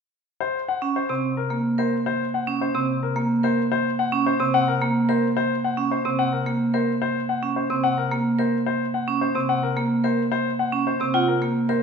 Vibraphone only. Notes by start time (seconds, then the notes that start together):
0.82 C#4
1.09 C4
1.78 A#4
2.47 C#4
2.75 C4
3.43 A#4
4.12 C#4
4.40 C4
5.09 A#4
5.77 C#4
6.05 C4
6.74 A#4
7.43 C#4
7.70 C4
8.39 A#4
9.08 C#4
9.35 C4
10.04 A#4
10.72 C#4
11.00 C4
11.14 F4
11.69 A#4